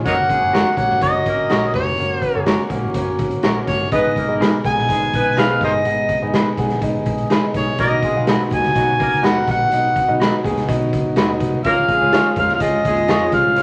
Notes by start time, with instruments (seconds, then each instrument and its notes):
0.04 picked electric bass F#1, tonewheel organ F#3 A#3 C#4 F#4, grand piano A#3 C#4 F#4 C#5, saxophone section A#3 A#4, harmonica C#5 D#5 F#5, kick, closed hi-hat
0.29 saxophone section G#3 G#4, kick, closed hi-hat
0.40 picked electric bass F#1, grand piano A#3 C#4 F#4 C#5
0.53 clean electric guitar F#4 A#4 C#5, snare, closed hi-hat
0.77 picked electric bass A#1, grand piano A#3 C#4 F#4 C#5, harmonica F#5, kick, closed hi-hat
0.90 picked electric bass G#1, snare
1.01 picked electric bass F#1, saxophone section F#3 F#4, grand piano A#3 C#4 F#4 C#5, harmonica D#5, kick, closed hi-hat
1.26 picked electric bass G#1, saxophone section A#3 A#4, kick, closed hi-hat
1.50 picked electric bass A#1, clean electric guitar F#4 A#4 C#5, snare, closed hi-hat
1.63 grand piano A#3 C#4 F#4 C#5
1.74 picked electric bass F1, harmonica C#5, kick, snare, open hi-hat
1.98 picked electric bass F#1, grand piano A#3 C#4 F#4 C#5, closed hi-hat
2.22 kick, closed hi-hat
2.35 picked electric bass F#1, grand piano A#3 C#4 F#4 C#5
2.46 clean electric guitar F#4 A#4 C#5, snare, closed hi-hat
2.70 picked electric bass A#1, grand piano A#3 C#4 F#4 A#4, kick, closed hi-hat
2.84 picked electric bass G#1
2.94 picked electric bass F#1, grand piano A#3 C#4 F#4 B4, kick, closed hi-hat
3.02 grand piano C#5
3.19 picked electric bass G#1, kick, closed hi-hat
3.31 closed hi-hat
3.43 picked electric bass A#1, clean electric guitar F#4 A#4 C#5, snare, closed hi-hat
3.57 grand piano A#3 C#4 F#4 A#4
3.67 picked electric bass G1, harmonica C#5, kick, snare, closed hi-hat
3.92 picked electric bass G#1, tonewheel organ B2 G#3 D#4 G#4, saxophone section B3 B4, grand piano B3 D#4 G#4 D#5, harmonica D#5, kick, closed hi-hat
4.16 saxophone section A#3 A#4, kick, closed hi-hat
4.28 picked electric bass G#1, grand piano B3 D#4 G#4 D#5
4.40 clean electric guitar D#4 G#4 B4, snare, closed hi-hat
4.64 picked electric bass B1, grand piano B3 D#4 G#4 F#5, harmonica G#5, kick, closed hi-hat
4.76 picked electric bass A#1, snare
4.88 picked electric bass G#1, saxophone section G#3 G#4, grand piano B3 D#4 G#4 D#5, kick, closed hi-hat
5.13 picked electric bass A#1, saxophone section B3 B4, kick, closed hi-hat
5.36 picked electric bass B1, clean electric guitar D#4 G#4 B4, harmonica F5, snare, closed hi-hat
5.50 grand piano B3 D#4 G#4 B4
5.61 picked electric bass G1, harmonica A#4 C5 D#5, kick, snare, open hi-hat
5.85 picked electric bass G#1, grand piano B3 D#4 G#4 F#5, closed hi-hat
6.09 kick, closed hi-hat
6.22 picked electric bass G#1, grand piano B3 D#4 G#4 D#5
6.34 clean electric guitar D#4 G#4 B4, snare, closed hi-hat
6.57 picked electric bass B1, grand piano B3 D#4 G#4 F#5, kick, closed hi-hat
6.70 picked electric bass A#1, snare, closed hi-hat
6.82 picked electric bass G#1, grand piano B3 D#4 G#4 D#5, kick, closed hi-hat
7.06 picked electric bass A#1, kick, closed hi-hat
7.18 closed hi-hat
7.30 clean electric guitar D#4 G#4 B4, snare, closed hi-hat
7.43 grand piano B3 D#4 G#4 D#5, muted picked electric bass stroke
7.54 picked electric bass B1, harmonica C#5, kick, snare, closed hi-hat
7.78 picked electric bass B1, tonewheel organ F#3 F#4, saxophone section A#3 A#4, grand piano B3 D#4 F#4 D#5, harmonica D#5, kick, closed hi-hat
8.03 saxophone section G#3 G#4, kick, closed hi-hat
8.15 picked electric bass B1, grand piano B3 D#4 F#4 F5
8.27 clean electric guitar D#4 F#4 B4, snare, closed hi-hat
8.51 picked electric bass D#2, grand piano B3 D#4 F#4 D#5, harmonica G#5, kick, closed hi-hat
8.64 picked electric bass C#2, snare, closed hi-hat
8.74 picked electric bass B1, saxophone section F#3 F#4, grand piano B3 D#4 F#4 D#5, kick, closed hi-hat
8.99 picked electric bass C#2, saxophone section A#3 A#4, kick, closed hi-hat
9.12 closed hi-hat
9.23 picked electric bass D#2, clean electric guitar D#4 F#4 B4, harmonica F#5, snare, closed hi-hat
9.36 grand piano B3 D#4 F#4 A#4
9.47 picked electric bass A#1, harmonica F#5, kick, snare, closed hi-hat
9.72 picked electric bass B1, grand piano B3 D#4 F#4 D#5, closed hi-hat
9.96 kick, closed hi-hat
10.08 picked electric bass B1, grand piano B3 D#4 F#4 D#5
10.20 clean electric guitar D#4 F#4 B4, snare, closed hi-hat
10.44 picked electric bass D#2, grand piano B3 D#4 F#4 G#4, kick, closed hi-hat
10.57 picked electric bass C#2, snare, closed hi-hat
10.68 picked electric bass B1, grand piano B3 D#4 F#4 D#5, kick, closed hi-hat
10.93 picked electric bass C#2, kick, closed hi-hat
11.16 picked electric bass D#2, clean electric guitar D#4 F#4 B4, snare, closed hi-hat
11.28 grand piano B3 D#4 F#4 D#5
11.40 picked electric bass C2, kick, closed hi-hat
11.64 picked electric bass C#2, tonewheel organ F3 G#3 C#4 F4, grand piano G#3 C#4 F4 C#5, saxophone section A#3 A#4, harmonica F5, kick, closed hi-hat
11.89 saxophone section G#3 G#4, kick, closed hi-hat
12.01 picked electric bass C#2, grand piano G#3 C#4 F4 C#5
12.13 clean electric guitar F4 G#4 C#5, snare, closed hi-hat
12.36 picked electric bass F2, grand piano G#3 C#4 F4 A#4, harmonica F5, kick, closed hi-hat
12.49 picked electric bass D#2, snare
12.55 harmonica F5
12.60 picked electric bass C#2, saxophone section F3 F4, grand piano G#3 C#4 F4 G#4, harmonica D#5, kick, closed hi-hat
12.85 picked electric bass D#2, saxophone section G#3 G#4, kick, closed hi-hat
12.97 closed hi-hat
13.08 picked electric bass F2, clean electric guitar F4 G#4 C#5, snare, closed hi-hat
13.21 grand piano G#3 C#4 F4 C#5
13.32 picked electric bass C2, harmonica F5, kick, snare, closed hi-hat
13.56 picked electric bass C#2, grand piano G#3 C#4 F4 C#5, closed hi-hat